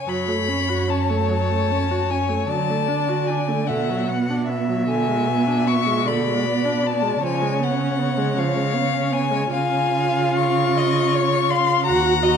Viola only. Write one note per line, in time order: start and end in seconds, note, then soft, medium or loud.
0.07 0.29 F#3 soft
0.28 0.50 A3 soft
0.48 0.71 C#4 soft
0.69 0.90 F#4 soft
0.89 1.11 C#4 soft
1.10 1.31 A3 soft
1.30 1.52 F#3 soft
1.51 1.73 A3 soft
1.71 1.92 C#4 soft
1.91 2.12 F#4 soft
2.10 2.31 C#4 soft
2.29 2.49 A3 soft
2.49 2.71 F#3 soft
2.70 2.89 A3 soft
2.88 3.10 D4 soft
3.09 3.31 F#4 soft
3.30 3.50 D4 soft
3.48 3.68 A3 soft
3.69 3.91 D3 soft
3.90 4.11 F#3 soft
4.10 4.31 B3 soft
4.30 4.51 D4 soft
4.50 4.71 B3 soft
4.69 4.88 F#3 soft
4.88 5.10 D3 soft
5.08 5.29 G#3 soft
5.28 5.48 B3 soft
5.47 5.68 D4 soft
5.67 5.88 B3 soft
5.87 6.07 G#3 soft
6.06 6.28 D3 soft
6.26 6.47 G#3 soft
6.45 6.66 B3 soft
6.65 6.85 D4 soft
6.84 7.04 B3 soft
7.02 7.21 G#3 soft
7.22 7.43 F3 soft
7.42 7.62 G#3 soft
7.61 7.82 B3 soft
7.81 8.00 C#4 soft
7.99 8.19 B3 soft
8.18 8.38 G#3 soft
8.36 8.57 F3 soft
8.55 8.75 G#3 soft
8.74 8.95 B3 soft
8.94 9.13 C#4 soft
9.12 9.33 B3 soft
9.31 9.50 G#3 medium
9.51 11.82 F4 medium
11.86 12.22 F#4 medium
12.22 12.37 F#4 medium